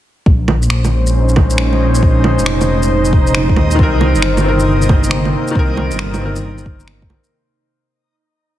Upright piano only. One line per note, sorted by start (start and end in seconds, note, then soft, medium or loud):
3.75 4.39 D#3 medium
3.79 4.43 C4 medium
3.79 4.45 A#4 medium
4.41 5.50 D#3 medium
4.41 5.53 C4 medium
4.48 5.55 A#4 medium
5.51 6.16 D#3 medium
5.51 6.20 C4 medium
5.59 6.22 A#4 loud
6.17 7.28 D#3 medium
6.17 7.30 C4 medium
6.26 7.32 A#4 medium